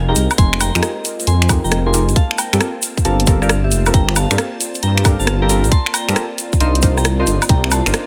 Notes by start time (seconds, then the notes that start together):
Already playing: F1 G#3 A#3 C4 F4 A#4 D#5
0.08 D#4 F4 G4 G#4 A#4 G5 A#5
0.16 C2, open hi-hat, shaker
0.30 closed hi-hat, high woodblock, shaker
0.38 F1 G#5 C6, kick, closed hi-hat, shaker
0.53 finger snap
0.60 G5 A#5, open hi-hat, high woodblock, shaker
0.75 F2 D#4 F4 G4 G#4 A#4, finger snap, closed hi-hat, shaker
0.83 cross-stick, closed hi-hat, shaker
1.05 open hi-hat, shaker
1.20 closed hi-hat, shaker
1.27 F2 G#5 C6, closed hi-hat, shaker
1.42 finger snap, closed hi-hat
1.49 D#4 F4 G4 G#4 A#4, kick, open hi-hat, high woodblock, shaker
1.64 F1 G5 A#5, shaker
1.71 cross-stick, closed hi-hat, shaker
1.86 D#4 F4 G4 G#4 A#4 G#5 C6
1.94 D#4 F4 G4 G#4 A#4, open hi-hat, shaker
2.09 G#1, closed hi-hat, shaker
2.16 C4 F4 F5 A5, kick, closed hi-hat
2.31 finger snap
2.38 A#4 G5, open hi-hat, high woodblock, shaker
2.53 G2 C4 F4 G4 A4 A#4, finger snap, closed hi-hat, shaker
2.60 cross-stick, closed hi-hat, shaker
2.72 A#3
2.82 open hi-hat, shaker
2.97 kick, closed hi-hat, shaker
3.05 G1 C4 F4 G4 A4 A#4 F5 A5, closed hi-hat, shaker
3.20 closed hi-hat
3.27 C4 F4 G4 A4 A#4 D5, kick, open hi-hat, shaker
3.42 C4 F4 G4 A4 A#4 D5 F5, cross-stick, shaker
3.49 cross-stick, closed hi-hat, shaker
3.64 G4 E5
3.71 F1, open hi-hat, shaker
3.86 C4 F4 G4 A4 A#4, closed hi-hat, high woodblock, shaker
3.94 G1 G5 A#5, kick, closed hi-hat, shaker
4.09 finger snap
4.16 F5 A5, open hi-hat, high woodblock, shaker
4.31 G2 C4 F4 G4 A4 A#4, finger snap, closed hi-hat, shaker
4.38 cross-stick, closed hi-hat, shaker
4.61 open hi-hat, shaker
4.74 closed hi-hat, shaker
4.82 G2 G5 A#5, closed hi-hat, shaker
4.98 finger snap, closed hi-hat
5.05 C4 F4 G4 A4 A#4, kick, open hi-hat, high woodblock, shaker
5.20 G1 F5 A5, shaker
5.27 cross-stick, closed hi-hat
5.42 C4 F4 G4 A4 A#4 G5 A#5
5.49 C4 F4 G4 A4 A#4, open hi-hat, shaker
5.64 A#1, closed hi-hat, shaker
5.71 A5 C6, kick, closed hi-hat
5.86 finger snap
5.94 G5 A#5, open hi-hat, high woodblock, shaker
6.08 G2 C4 F4 G4 A4 A#4, finger snap, closed hi-hat, shaker
6.16 cross-stick, closed hi-hat, shaker
6.38 open hi-hat, shaker
6.53 kick, closed hi-hat, shaker
6.60 C2 C4 D4 D#4 F4 A#4 C5 D5 D#5 C6, closed hi-hat, shaker
6.75 closed hi-hat
6.82 D4 D#4 F4 A#4 C5, kick, open hi-hat, shaker
6.97 G5 A#5, cross-stick, shaker
7.05 cross-stick, closed hi-hat, shaker
7.20 D4 D#4 F4 A#4 C5 D#5 C6
7.27 G1, open hi-hat, shaker
7.42 closed hi-hat, high woodblock, shaker
7.49 C2 G5 A#5, kick, closed hi-hat
7.64 finger snap
7.71 C5 A5, open hi-hat, high woodblock, shaker
7.86 G1 D4 D#4 F4 A#4 C5, finger snap, closed hi-hat, shaker
7.93 cross-stick, closed hi-hat, shaker